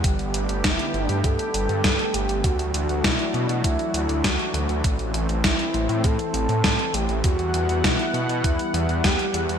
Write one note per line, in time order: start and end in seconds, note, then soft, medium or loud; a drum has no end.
0.00 2.40 G3 medium
0.00 2.40 B3 medium
0.04 0.18 G1 loud
0.04 2.42 D3 medium
0.04 7.20 A3 medium
0.04 2.42 G4 medium
0.04 kick loud
0.04 closed hi-hat medium
0.19 0.32 G1 medium
0.19 closed hi-hat soft
0.34 0.47 G1 medium
0.34 closed hi-hat medium
0.49 0.62 G1 medium
0.49 closed hi-hat soft
0.64 0.78 G1 loud
0.64 1.07 E4 loud
0.64 kick loud
0.64 snare loud
0.64 closed hi-hat medium
0.79 closed hi-hat soft
0.94 1.08 G1 loud
0.94 closed hi-hat soft
1.07 1.23 G2 medium
1.07 1.25 D4 loud
1.07 closed hi-hat soft
1.24 1.38 G2 medium
1.24 2.15 A4 loud
1.24 kick loud
1.24 closed hi-hat medium
1.39 closed hi-hat soft
1.54 1.67 G1 medium
1.54 closed hi-hat medium
1.69 1.82 G2 medium
1.69 closed hi-hat soft
1.84 1.98 G2 loud
1.84 kick loud
1.84 snare loud
1.84 closed hi-hat medium
1.99 closed hi-hat soft
2.14 2.27 G1 medium
2.14 2.45 G4 loud
2.14 closed hi-hat medium
2.29 2.42 G1 medium
2.29 closed hi-hat soft
2.44 2.58 D2 loud
2.44 9.59 E3 medium
2.44 4.82 F#3 medium
2.44 4.82 D4 medium
2.44 3.05 F#4 loud
2.44 4.82 F#4 medium
2.44 kick loud
2.44 closed hi-hat medium
2.59 2.72 D2 medium
2.59 closed hi-hat soft
2.74 2.88 D2 loud
2.74 closed hi-hat medium
2.89 3.02 D2 medium
2.89 closed hi-hat soft
3.04 3.18 B2 loud
3.04 3.63 E4 medium
3.04 kick loud
3.04 snare loud
3.04 closed hi-hat medium
3.19 closed hi-hat soft
3.34 3.47 B2 loud
3.34 closed hi-hat soft
3.49 3.62 B2 medium
3.49 closed hi-hat soft
3.64 3.78 D2 loud
3.64 4.25 E4 medium
3.64 kick loud
3.64 closed hi-hat medium
3.79 closed hi-hat soft
3.94 4.07 D2 medium
3.94 closed hi-hat medium
4.09 4.22 D2 medium
4.09 closed hi-hat soft
4.24 4.38 D2 loud
4.24 4.69 F#4 medium
4.24 kick loud
4.24 snare loud
4.24 closed hi-hat medium
4.39 closed hi-hat soft
4.54 4.67 D2 medium
4.54 closed hi-hat medium
4.69 4.82 D2 medium
4.69 closed hi-hat soft
4.84 4.98 A1 loud
4.84 7.22 C4 medium
4.84 kick loud
4.84 closed hi-hat medium
4.99 5.12 A1 medium
4.99 closed hi-hat soft
5.14 5.27 A1 loud
5.14 closed hi-hat medium
5.29 5.42 A1 medium
5.29 closed hi-hat soft
5.44 5.58 A1 loud
5.44 6.06 E4 loud
5.44 kick loud
5.44 snare loud
5.44 closed hi-hat medium
5.59 closed hi-hat soft
5.74 5.88 A1 loud
5.74 closed hi-hat soft
5.89 6.02 A2 medium
5.89 closed hi-hat soft
6.04 6.18 A2 loud
6.04 6.96 A4 loud
6.04 kick loud
6.04 closed hi-hat medium
6.19 closed hi-hat soft
6.34 6.47 A1 medium
6.34 closed hi-hat medium
6.49 6.62 A2 medium
6.49 closed hi-hat soft
6.64 6.78 A2 loud
6.64 kick loud
6.64 snare loud
6.64 closed hi-hat medium
6.79 closed hi-hat soft
6.94 7.07 A1 medium
6.94 7.24 G4 loud
6.94 closed hi-hat medium
7.09 7.22 A1 medium
7.09 closed hi-hat soft
7.24 7.38 E2 loud
7.24 9.59 G3 medium
7.24 9.59 B3 medium
7.24 7.86 F#4 loud
7.24 9.59 F#5 medium
7.24 kick loud
7.24 closed hi-hat medium
7.39 7.52 E2 medium
7.39 closed hi-hat soft
7.54 7.67 E2 medium
7.54 closed hi-hat medium
7.69 7.82 E2 medium
7.69 closed hi-hat soft
7.84 7.98 B2 loud
7.84 8.44 E4 medium
7.84 kick loud
7.84 snare loud
7.84 closed hi-hat medium
7.99 closed hi-hat soft
8.14 8.27 B2 loud
8.14 closed hi-hat soft
8.29 8.42 B2 medium
8.29 closed hi-hat soft
8.44 8.58 E2 loud
8.44 9.06 E4 medium
8.44 kick loud
8.44 closed hi-hat medium
8.59 closed hi-hat soft
8.74 8.87 E2 medium
8.74 closed hi-hat medium
8.89 9.02 E2 medium
8.89 closed hi-hat soft
9.04 9.18 E2 loud
9.04 9.49 G4 medium
9.04 kick loud
9.04 snare loud
9.04 closed hi-hat medium
9.19 closed hi-hat soft
9.34 9.47 E2 medium
9.34 closed hi-hat medium
9.49 9.59 E2 medium
9.49 closed hi-hat soft